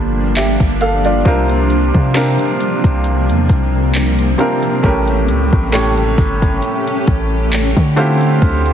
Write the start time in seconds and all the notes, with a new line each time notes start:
Already playing: G1 F3 G3 A#3 D4 F4 G4 A4 C5
0.36 G4 E5, clap, closed hi-hat
0.60 G1, kick, closed hi-hat
0.81 A4 F5, closed hi-hat
1.05 F4 D5, closed hi-hat
1.25 C2 C3 A#3 C4 D4 F4 A#4, kick, closed hi-hat
1.49 closed hi-hat
1.70 closed hi-hat
1.94 C3, kick
2.14 C3 C4 D4 F4 A#4, clap, closed hi-hat
2.39 closed hi-hat
2.61 closed hi-hat
2.84 C2, kick, closed hi-hat
3.04 C4, closed hi-hat
3.29 E2, closed hi-hat
3.49 C2, kick, closed hi-hat
3.95 clap, closed hi-hat
4.19 closed hi-hat
4.38 C3 C4 D4 F4 A#4, closed hi-hat
4.63 closed hi-hat
4.83 A1 A2 A3 C#4 G4 A#4, kick, closed hi-hat
5.08 closed hi-hat
5.28 C#2, closed hi-hat
5.53 A1, kick
5.72 A2 A3 C#4 G4 C#5, clap, closed hi-hat
5.97 closed hi-hat
6.18 G1, kick, closed hi-hat
6.42 kick, closed hi-hat
6.62 closed hi-hat
6.88 closed hi-hat
7.07 A1, kick, closed hi-hat
7.53 clap, closed hi-hat
7.77 D3, kick, closed hi-hat
7.96 D3 F3 A3 C4 E4 F4 G4 E5, closed hi-hat
8.21 closed hi-hat
8.42 D2, kick, closed hi-hat
8.66 closed hi-hat